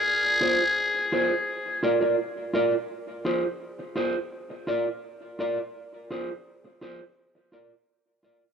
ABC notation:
X:1
M:4/4
L:1/16
Q:1/4=84
K:Fdor
V:1 name="Clean electric guitar"
z2 [FAc] z3 [FAc] z3 [FBd] [FBd] z2 [FBd] z | z2 [FAc] z3 [FAc] z3 [FBd] z3 [FBd] z | z2 [FAc] z3 [FAc] z3 [FBd] z3 [FBd] z |]
V:2 name="Muted trumpet"
A8- A2 z6 | z16 | z16 |]